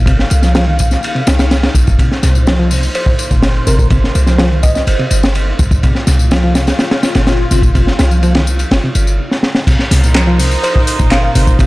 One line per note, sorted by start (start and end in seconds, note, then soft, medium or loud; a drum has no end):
0.00 0.25 G1 loud
0.00 9.63 A#3 medium
0.00 9.63 D#4 medium
0.00 1.98 F5 medium
0.06 0.12 C3 loud
0.06 kick loud
0.06 ride medium
0.06 tambourine soft
0.19 snare soft
0.30 0.97 C2 loud
0.30 ride medium
0.30 tambourine medium
0.42 0.54 F3 medium
0.42 snare soft
0.42 tambourine soft
0.55 0.64 F3 medium
0.55 snare loud
0.55 ride medium
0.55 tambourine soft
0.67 0.73 D#3 medium
0.79 kick medium
0.79 ride medium
0.79 tambourine medium
0.91 snare soft
0.91 tambourine soft
1.03 ride medium
1.03 tambourine soft
1.15 1.21 C3 loud
1.15 ride soft
1.27 1.69 C2 medium
1.27 snare loud
1.27 ride medium
1.27 tambourine medium
1.39 snare loud
1.39 ride medium
1.39 tambourine soft
1.51 snare loud
1.51 ride medium
1.51 tambourine soft
1.63 snare loud
1.63 ride medium
1.75 1.83 A#1 medium
1.75 kick medium
1.75 ride medium
1.75 tambourine medium
1.87 1.95 G1 medium
1.87 kick medium
1.87 tambourine soft
1.99 2.08 C3 medium
1.99 5.82 C5 medium
1.99 kick loud
1.99 ride medium
1.99 tambourine soft
2.12 snare soft
2.23 2.89 C2 loud
2.23 2.32 C3 medium
2.23 snare soft
2.23 ride medium
2.23 tambourine medium
2.35 2.44 A#2 medium
2.35 tambourine soft
2.47 2.58 F3 medium
2.47 snare loud
2.47 ride medium
2.47 tambourine soft
2.59 2.70 F3 medium
2.71 2.83 C3 medium
2.71 open hi-hat medium
2.71 tambourine medium
2.83 tambourine soft
2.95 3.12 C5 medium
2.95 ride medium
2.95 tambourine soft
3.06 kick medium
3.19 ride medium
3.19 tambourine medium
3.31 3.61 G1 medium
3.31 3.66 A#2 medium
3.31 kick medium
3.31 tambourine soft
3.43 snare loud
3.43 ride medium
3.43 tambourine soft
3.67 4.09 G1 loud
3.67 3.76 C3 loud
3.67 3.75 A#4 medium
3.67 ride medium
3.67 tambourine medium
3.79 3.88 A#2 medium
3.79 3.87 A#4 medium
3.79 kick medium
3.79 tambourine soft
3.90 3.97 C3 loud
3.90 kick loud
3.90 ride medium
3.90 tambourine soft
4.04 snare soft
4.15 4.81 C2 loud
4.15 ride medium
4.15 tambourine medium
4.27 4.38 F3 medium
4.27 snare soft
4.27 tambourine soft
4.38 4.48 F3 medium
4.38 snare loud
4.38 ride medium
4.38 tambourine soft
4.51 4.57 D#3 medium
4.63 4.71 D#5 medium
4.63 kick medium
4.63 ride medium
4.63 tambourine medium
4.75 4.83 D#5 medium
4.75 snare soft
4.75 tambourine soft
4.87 4.95 G1 medium
4.87 ride medium
4.87 tambourine soft
4.99 5.05 C3 medium
4.99 ride soft
5.10 5.53 G1 medium
5.10 ride medium
5.10 tambourine medium
5.23 snare loud
5.23 tambourine soft
5.35 ride medium
5.35 tambourine soft
5.59 5.67 C2 loud
5.59 kick loud
5.59 ride medium
5.59 tambourine medium
5.71 5.79 C2 medium
5.71 kick loud
5.71 tambourine soft
5.83 5.92 C3 medium
5.83 9.66 F4 medium
5.83 kick loud
5.83 ride medium
5.83 tambourine soft
5.95 snare soft
6.07 6.73 C2 loud
6.07 6.16 C3 medium
6.07 snare soft
6.07 ride medium
6.07 tambourine medium
6.19 6.28 A#2 medium
6.19 tambourine soft
6.31 6.42 F3 medium
6.31 snare loud
6.31 ride medium
6.31 tambourine soft
6.44 6.54 F3 medium
6.55 6.67 C3 medium
6.55 snare medium
6.55 ride medium
6.55 tambourine medium
6.67 snare loud
6.67 ride medium
6.67 tambourine soft
6.79 snare loud
6.79 ride medium
6.79 tambourine soft
6.91 snare loud
6.91 ride medium
7.03 snare loud
7.03 ride medium
7.03 tambourine medium
7.15 7.45 G1 medium
7.15 7.50 A#2 medium
7.15 snare medium
7.15 ride medium
7.15 tambourine soft
7.27 snare loud
7.27 ride medium
7.27 tambourine soft
7.51 7.93 G1 loud
7.51 7.60 C3 loud
7.51 ride medium
7.51 tambourine medium
7.62 7.72 A#2 medium
7.62 kick loud
7.62 tambourine soft
7.75 7.81 C3 loud
7.75 kick loud
7.75 ride medium
7.75 tambourine soft
7.87 snare medium
7.99 8.65 C2 loud
7.99 snare loud
7.99 ride medium
7.99 tambourine medium
8.11 8.22 F3 medium
8.11 tambourine soft
8.23 8.32 F3 medium
8.23 ride medium
8.23 tambourine soft
8.35 8.41 D#3 medium
8.35 snare loud
8.35 ride medium
8.47 tambourine medium
8.59 ride medium
8.59 tambourine soft
8.71 8.79 G1 medium
8.71 snare loud
8.71 ride medium
8.71 tambourine soft
8.83 8.89 C3 loud
8.95 9.19 G1 medium
8.95 ride medium
8.95 tambourine medium
9.07 tambourine soft
9.31 snare medium
9.43 snare medium
9.55 snare medium
9.67 9.76 C3 medium
9.67 kick loud
9.67 crash medium
9.67 ride medium
9.67 tambourine soft
9.79 snare soft
9.91 10.57 C2 loud
9.91 10.00 C3 medium
9.91 snare soft
9.91 open hi-hat medium
9.91 ride medium
9.91 tambourine medium
10.03 10.12 A#2 medium
10.03 11.32 D#4 medium
10.03 11.32 A#4 medium
10.03 11.32 C5 medium
10.03 tambourine soft
10.15 10.26 F3 medium
10.15 snare loud
10.15 clap loud
10.15 ride medium
10.15 tambourine soft
10.27 10.38 F3 medium
10.39 10.51 C3 medium
10.39 open hi-hat medium
10.39 tambourine medium
10.51 tambourine soft
10.63 10.80 C5 medium
10.63 ride medium
10.63 tambourine soft
10.76 kick medium
10.87 open hi-hat medium
10.87 ride medium
10.87 tambourine medium
10.99 11.29 G1 medium
10.99 11.34 A#2 medium
10.99 kick medium
10.99 tambourine soft
11.11 11.19 F5 medium
11.11 snare loud
11.11 clap loud
11.11 ride medium
11.11 tambourine soft
11.23 11.31 F5 medium
11.35 11.66 G1 loud
11.35 11.44 C3 loud
11.35 11.46 D#4 medium
11.35 11.46 A#4 medium
11.35 11.46 C5 loud
11.35 open hi-hat medium
11.35 ride medium
11.35 tambourine medium
11.47 11.56 A#2 medium
11.47 kick medium
11.47 tambourine soft
11.59 11.65 C3 loud
11.59 kick loud
11.59 ride medium
11.59 tambourine soft